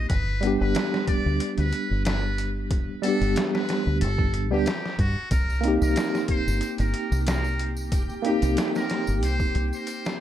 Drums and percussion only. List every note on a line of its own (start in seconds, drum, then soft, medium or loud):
0.10 kick loud
0.10 closed hi-hat medium
0.43 closed hi-hat medium
0.75 snare loud
0.75 closed hi-hat medium
0.94 snare soft
1.08 kick loud
1.08 closed hi-hat medium
1.40 closed hi-hat medium
1.58 closed hi-hat soft
1.73 closed hi-hat medium
2.05 snare loud
2.05 closed hi-hat medium
2.38 closed hi-hat medium
2.71 kick loud
2.71 closed hi-hat medium
3.03 closed hi-hat medium
3.22 closed hi-hat soft
3.36 snare loud
3.36 closed hi-hat medium
3.55 snare soft
3.69 snare medium
3.69 closed hi-hat medium
4.01 closed hi-hat medium
4.18 kick loud
4.34 closed hi-hat medium
4.66 snare loud
4.66 closed hi-hat medium
4.86 snare soft
4.99 kick medium
4.99 closed hi-hat medium
5.31 kick loud
5.31 closed hi-hat medium
5.31 tambourine medium
5.50 tambourine soft
5.64 closed hi-hat medium
5.82 tambourine medium
5.96 snare loud
5.96 closed hi-hat medium
5.96 tambourine medium
6.15 snare soft
6.15 tambourine soft
6.28 kick medium
6.28 closed hi-hat medium
6.48 tambourine medium
6.61 closed hi-hat medium
6.61 tambourine medium
6.78 closed hi-hat soft
6.78 tambourine soft
6.94 closed hi-hat medium
7.12 tambourine medium
7.27 snare loud
7.27 closed hi-hat medium
7.27 tambourine medium
7.44 tambourine soft
7.59 closed hi-hat medium
7.77 tambourine medium
7.92 kick loud
7.92 closed hi-hat medium
7.92 tambourine medium
8.10 tambourine soft
8.25 closed hi-hat medium
8.42 closed hi-hat soft
8.42 tambourine medium
8.57 snare loud
8.57 closed hi-hat medium
8.57 tambourine medium
8.75 snare soft
8.75 tambourine soft
8.90 snare medium
8.90 closed hi-hat medium
9.07 tambourine medium
9.23 closed hi-hat medium
9.23 tambourine medium
9.40 kick medium
9.40 tambourine soft
9.55 closed hi-hat medium
9.73 tambourine medium
9.87 closed hi-hat medium
9.87 tambourine medium
10.05 snare loud
10.05 tambourine soft